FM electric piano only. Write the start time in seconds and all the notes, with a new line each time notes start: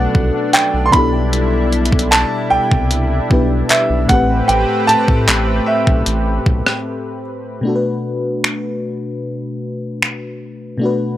Already playing: B2 F#3 A3 C#4 D4 F#4 A4
0.91 B2 B3 D4
0.95 E4 G4 A4
3.29 B2 B3 D4 E4 G4 B4
4.06 A2 A3 C4
4.12 G4 B4
7.61 B2 A3 D4
7.67 F#4 A4
7.76 B4
10.78 B2 A3 D4
10.83 F#4 B4